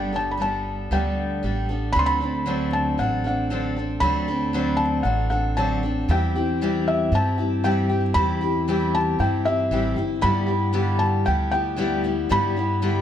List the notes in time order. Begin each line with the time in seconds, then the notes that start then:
Already playing: G1 G2 D3 G3 B3 D4 A4 G5
0.13 G3 B3 D4 A4 A5
0.31 B5
0.39 G3 B3 D4 A4 A5
0.91 D2 G2 D3 G3 B3 D4 A4 G5
1.43 A1 G3 B3 D4 A4
1.69 G3 B3 D4 A4
1.93 D2 D3 F#3 C4 D4 A4 B5
1.99 C6
2.06 B5
2.20 C4 D4 A4
2.46 D3 F#3 C4 D4 A4
2.73 A5
2.98 A1 F#3 C4 D4 A4 F#5
3.24 C4 D4 A4 F#5
3.50 D3 F#3 C4 D4 A4
3.76 C4 D4 A4
4.00 D2 D3 F#3 C4 D4 A4 B5
4.28 C4 D4 A4
4.53 D3 F#3 C4 D4 A4
4.77 A5
5.03 A1 F#3 C4 D4 A4 F#5
5.30 C4 D4 A4 F#5
5.57 D3 F#3 C4 D4 A4 A5
5.83 C4 D4 A4
6.09 E2 E3 G3 C4 E4 G4 G5
6.35 C4 E4 G4
6.61 E3 G3 C4 E4 G4
6.88 E5
7.12 G2 G3 C4 E4 G4 A5
7.38 C4 E4 G4
7.64 E3 G3 C4 E4 G4 G5
7.89 C4 E4 G4
8.14 E2 E3 G3 C4 E4 G4 B5
8.41 C4 E4 G4
8.68 E3 G3 C4 E4 G4
8.95 A5
9.19 G2 G3 C4 E4 G4 G5
9.45 C4 E4 G4 E5
9.71 A1 E3 G3 C4 E4 G4
9.96 G1 C4 E4 G4
10.21 G2 D3 G3 B3 E4 G4 B5
10.46 G3 B3 E4 G4
10.73 G2 D3 G3 B3 E4 G4
10.99 A5
11.25 D2 G3 B3 E4 G4 G5
11.51 G3 B3 E4 G4 G5
11.76 G2 D3 G3 B3 E4 G4
12.04 G3 B3 E4 G4
12.29 G2 D3 G3 B3 E4 G4 B5
12.56 G3 B3 E4 G4
12.82 G2 D3 G3 B3 E4 G4